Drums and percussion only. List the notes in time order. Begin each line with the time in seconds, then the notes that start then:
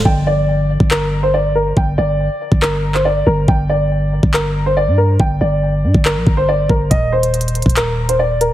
0.05 kick
0.80 kick
0.91 clap
1.77 kick
2.52 kick
2.62 clap
2.94 clap
3.48 kick
4.23 kick
4.34 clap
5.20 kick
5.94 kick
6.05 clap
6.27 kick
6.70 kick
6.91 kick, closed hi-hat
7.23 closed hi-hat
7.34 closed hi-hat
7.41 closed hi-hat
7.48 closed hi-hat
7.55 closed hi-hat
7.62 kick, closed hi-hat
7.70 closed hi-hat
7.76 clap, closed hi-hat
8.09 closed hi-hat
8.41 closed hi-hat